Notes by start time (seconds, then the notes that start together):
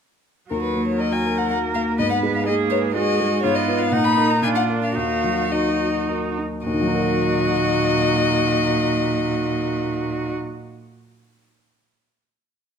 0.50 D#2 F#3 F#4 A#4
0.63 B4
0.75 A#3
0.87 C#5
1.00 F#4 A#4 D#5
1.12 G#5
1.25 A#4
1.38 F#5
1.49 A#3 F#4 F#5
1.74 A#3 F5
1.99 G#2 B3 B4 D#5
2.10 F#5
2.23 G#3
2.34 F5
2.46 A#3 G#4 D#5
2.70 B4 C#5
2.94 G#3 F#4 G#4 D#5
3.20 G#3
3.43 G#2 B3 F4 C#5
3.55 D#5
3.68 F4 B4
3.79 F5
3.92 A#2 D#4 F#5
4.04 B5
4.17 D#4 A#4
4.30 A#5
4.42 A#2 D4 F4 G#5
4.55 F#5
4.69 D4 A#4
4.83 F5
4.95 D#2 D#4 F#4 F5
5.24 F#3
5.52 D#4 D#5
5.80 F#4
6.09 A#4
6.38 D#4
6.65 D#2 A#2 F#4 D#5
6.74 D#3
6.81 F#3
6.87 D#4
6.95 A#4
7.02 D#5